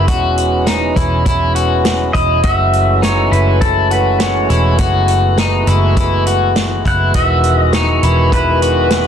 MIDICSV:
0, 0, Header, 1, 6, 480
1, 0, Start_track
1, 0, Key_signature, 4, "major"
1, 0, Tempo, 588235
1, 71, Time_signature, 4, 2, 24, 8
1, 7402, End_track
2, 0, Start_track
2, 0, Title_t, "Pedal steel guitar"
2, 0, Program_c, 0, 26
2, 1741, Note_on_c, 0, 75, 90
2, 1969, Note_off_c, 0, 75, 0
2, 1989, Note_on_c, 0, 76, 97
2, 2477, Note_off_c, 0, 76, 0
2, 2481, Note_on_c, 0, 73, 82
2, 2699, Note_off_c, 0, 73, 0
2, 2706, Note_on_c, 0, 71, 72
2, 2945, Note_on_c, 0, 69, 76
2, 2956, Note_off_c, 0, 71, 0
2, 3171, Note_off_c, 0, 69, 0
2, 3206, Note_on_c, 0, 71, 84
2, 3426, Note_off_c, 0, 71, 0
2, 3429, Note_on_c, 0, 73, 64
2, 3765, Note_off_c, 0, 73, 0
2, 5610, Note_on_c, 0, 78, 92
2, 5831, Note_off_c, 0, 78, 0
2, 5834, Note_on_c, 0, 76, 81
2, 6185, Note_off_c, 0, 76, 0
2, 6185, Note_on_c, 0, 75, 81
2, 6316, Note_on_c, 0, 73, 65
2, 6327, Note_off_c, 0, 75, 0
2, 6801, Note_on_c, 0, 71, 66
2, 6808, Note_off_c, 0, 73, 0
2, 7402, Note_off_c, 0, 71, 0
2, 7402, End_track
3, 0, Start_track
3, 0, Title_t, "Clean electric guitar"
3, 0, Program_c, 1, 27
3, 66, Note_on_c, 1, 66, 86
3, 545, Note_on_c, 1, 63, 62
3, 549, Note_off_c, 1, 66, 0
3, 784, Note_on_c, 1, 64, 62
3, 788, Note_off_c, 1, 63, 0
3, 1015, Note_off_c, 1, 64, 0
3, 1025, Note_on_c, 1, 64, 81
3, 1263, Note_off_c, 1, 64, 0
3, 1266, Note_on_c, 1, 66, 65
3, 1743, Note_off_c, 1, 66, 0
3, 1746, Note_on_c, 1, 64, 72
3, 1984, Note_off_c, 1, 64, 0
3, 1987, Note_on_c, 1, 66, 84
3, 2467, Note_on_c, 1, 63, 68
3, 2469, Note_off_c, 1, 66, 0
3, 2705, Note_on_c, 1, 64, 61
3, 2709, Note_off_c, 1, 63, 0
3, 2937, Note_off_c, 1, 64, 0
3, 2947, Note_on_c, 1, 64, 70
3, 3183, Note_off_c, 1, 64, 0
3, 3186, Note_on_c, 1, 66, 66
3, 3668, Note_off_c, 1, 66, 0
3, 3671, Note_on_c, 1, 64, 70
3, 3910, Note_off_c, 1, 64, 0
3, 3913, Note_on_c, 1, 66, 84
3, 4392, Note_off_c, 1, 66, 0
3, 4396, Note_on_c, 1, 63, 73
3, 4631, Note_on_c, 1, 64, 65
3, 4633, Note_off_c, 1, 63, 0
3, 4864, Note_off_c, 1, 64, 0
3, 4873, Note_on_c, 1, 64, 71
3, 5112, Note_off_c, 1, 64, 0
3, 5115, Note_on_c, 1, 66, 57
3, 5593, Note_off_c, 1, 66, 0
3, 5596, Note_on_c, 1, 64, 63
3, 5832, Note_off_c, 1, 64, 0
3, 5835, Note_on_c, 1, 66, 89
3, 6313, Note_off_c, 1, 66, 0
3, 6317, Note_on_c, 1, 63, 67
3, 6554, Note_off_c, 1, 63, 0
3, 6556, Note_on_c, 1, 64, 74
3, 6786, Note_off_c, 1, 64, 0
3, 6796, Note_on_c, 1, 64, 71
3, 7032, Note_off_c, 1, 64, 0
3, 7035, Note_on_c, 1, 66, 63
3, 7402, Note_off_c, 1, 66, 0
3, 7402, End_track
4, 0, Start_track
4, 0, Title_t, "Harmonium"
4, 0, Program_c, 2, 20
4, 0, Note_on_c, 2, 52, 60
4, 0, Note_on_c, 2, 56, 64
4, 0, Note_on_c, 2, 59, 63
4, 0, Note_on_c, 2, 66, 68
4, 76, Note_on_c, 2, 61, 57
4, 1955, Note_off_c, 2, 56, 0
4, 1956, Note_off_c, 2, 59, 0
4, 1999, Note_on_c, 2, 56, 67
4, 2003, Note_on_c, 2, 57, 66
4, 3881, Note_off_c, 2, 61, 0
4, 3915, Note_on_c, 2, 59, 64
4, 5804, Note_off_c, 2, 57, 0
4, 5849, Note_on_c, 2, 51, 67
4, 7402, Note_off_c, 2, 51, 0
4, 7402, Note_off_c, 2, 52, 0
4, 7402, Note_off_c, 2, 56, 0
4, 7402, Note_off_c, 2, 59, 0
4, 7402, Note_off_c, 2, 66, 0
4, 7402, End_track
5, 0, Start_track
5, 0, Title_t, "Picked electric bass"
5, 0, Program_c, 3, 34
5, 63, Note_on_c, 3, 28, 81
5, 755, Note_off_c, 3, 28, 0
5, 783, Note_on_c, 3, 28, 84
5, 1714, Note_off_c, 3, 28, 0
5, 1752, Note_on_c, 3, 28, 89
5, 1979, Note_off_c, 3, 28, 0
5, 1986, Note_on_c, 3, 30, 95
5, 2676, Note_off_c, 3, 30, 0
5, 2708, Note_on_c, 3, 30, 87
5, 3637, Note_off_c, 3, 30, 0
5, 3671, Note_on_c, 3, 28, 76
5, 3899, Note_off_c, 3, 28, 0
5, 3905, Note_on_c, 3, 30, 89
5, 4596, Note_off_c, 3, 30, 0
5, 4627, Note_on_c, 3, 30, 86
5, 5557, Note_off_c, 3, 30, 0
5, 5593, Note_on_c, 3, 30, 74
5, 5820, Note_off_c, 3, 30, 0
5, 5829, Note_on_c, 3, 28, 100
5, 6517, Note_off_c, 3, 28, 0
5, 6551, Note_on_c, 3, 28, 83
5, 7402, Note_off_c, 3, 28, 0
5, 7402, End_track
6, 0, Start_track
6, 0, Title_t, "Drums"
6, 66, Note_on_c, 9, 36, 96
6, 66, Note_on_c, 9, 42, 60
6, 147, Note_off_c, 9, 42, 0
6, 148, Note_off_c, 9, 36, 0
6, 307, Note_on_c, 9, 42, 47
6, 389, Note_off_c, 9, 42, 0
6, 543, Note_on_c, 9, 38, 84
6, 546, Note_on_c, 9, 42, 64
6, 625, Note_off_c, 9, 38, 0
6, 628, Note_off_c, 9, 42, 0
6, 787, Note_on_c, 9, 36, 83
6, 790, Note_on_c, 9, 42, 49
6, 869, Note_off_c, 9, 36, 0
6, 872, Note_off_c, 9, 42, 0
6, 1028, Note_on_c, 9, 36, 98
6, 1028, Note_on_c, 9, 42, 65
6, 1109, Note_off_c, 9, 42, 0
6, 1110, Note_off_c, 9, 36, 0
6, 1271, Note_on_c, 9, 42, 47
6, 1353, Note_off_c, 9, 42, 0
6, 1508, Note_on_c, 9, 42, 60
6, 1509, Note_on_c, 9, 38, 88
6, 1590, Note_off_c, 9, 42, 0
6, 1591, Note_off_c, 9, 38, 0
6, 1751, Note_on_c, 9, 36, 70
6, 1755, Note_on_c, 9, 42, 46
6, 1833, Note_off_c, 9, 36, 0
6, 1836, Note_off_c, 9, 42, 0
6, 1987, Note_on_c, 9, 42, 61
6, 1990, Note_on_c, 9, 36, 101
6, 2068, Note_off_c, 9, 42, 0
6, 2072, Note_off_c, 9, 36, 0
6, 2231, Note_on_c, 9, 42, 44
6, 2313, Note_off_c, 9, 42, 0
6, 2471, Note_on_c, 9, 38, 80
6, 2473, Note_on_c, 9, 42, 68
6, 2553, Note_off_c, 9, 38, 0
6, 2555, Note_off_c, 9, 42, 0
6, 2716, Note_on_c, 9, 42, 44
6, 2797, Note_off_c, 9, 42, 0
6, 2951, Note_on_c, 9, 36, 97
6, 2951, Note_on_c, 9, 42, 59
6, 3032, Note_off_c, 9, 36, 0
6, 3032, Note_off_c, 9, 42, 0
6, 3192, Note_on_c, 9, 42, 46
6, 3273, Note_off_c, 9, 42, 0
6, 3425, Note_on_c, 9, 42, 57
6, 3426, Note_on_c, 9, 38, 91
6, 3507, Note_off_c, 9, 38, 0
6, 3507, Note_off_c, 9, 42, 0
6, 3672, Note_on_c, 9, 42, 42
6, 3754, Note_off_c, 9, 42, 0
6, 3904, Note_on_c, 9, 42, 64
6, 3908, Note_on_c, 9, 36, 105
6, 3986, Note_off_c, 9, 42, 0
6, 3990, Note_off_c, 9, 36, 0
6, 4145, Note_on_c, 9, 42, 49
6, 4227, Note_off_c, 9, 42, 0
6, 4388, Note_on_c, 9, 38, 82
6, 4391, Note_on_c, 9, 42, 66
6, 4470, Note_off_c, 9, 38, 0
6, 4472, Note_off_c, 9, 42, 0
6, 4628, Note_on_c, 9, 42, 47
6, 4710, Note_off_c, 9, 42, 0
6, 4870, Note_on_c, 9, 36, 92
6, 4870, Note_on_c, 9, 42, 56
6, 4951, Note_off_c, 9, 42, 0
6, 4952, Note_off_c, 9, 36, 0
6, 5113, Note_on_c, 9, 42, 47
6, 5194, Note_off_c, 9, 42, 0
6, 5352, Note_on_c, 9, 38, 93
6, 5352, Note_on_c, 9, 42, 58
6, 5433, Note_off_c, 9, 42, 0
6, 5434, Note_off_c, 9, 38, 0
6, 5594, Note_on_c, 9, 36, 69
6, 5598, Note_on_c, 9, 42, 45
6, 5675, Note_off_c, 9, 36, 0
6, 5679, Note_off_c, 9, 42, 0
6, 5826, Note_on_c, 9, 42, 63
6, 5831, Note_on_c, 9, 36, 97
6, 5908, Note_off_c, 9, 42, 0
6, 5912, Note_off_c, 9, 36, 0
6, 6067, Note_on_c, 9, 42, 45
6, 6149, Note_off_c, 9, 42, 0
6, 6306, Note_on_c, 9, 38, 90
6, 6309, Note_on_c, 9, 42, 63
6, 6388, Note_off_c, 9, 38, 0
6, 6390, Note_off_c, 9, 42, 0
6, 6551, Note_on_c, 9, 42, 43
6, 6633, Note_off_c, 9, 42, 0
6, 6791, Note_on_c, 9, 36, 96
6, 6794, Note_on_c, 9, 42, 65
6, 6873, Note_off_c, 9, 36, 0
6, 6875, Note_off_c, 9, 42, 0
6, 7035, Note_on_c, 9, 42, 50
6, 7117, Note_off_c, 9, 42, 0
6, 7267, Note_on_c, 9, 38, 92
6, 7267, Note_on_c, 9, 42, 66
6, 7348, Note_off_c, 9, 42, 0
6, 7349, Note_off_c, 9, 38, 0
6, 7402, End_track
0, 0, End_of_file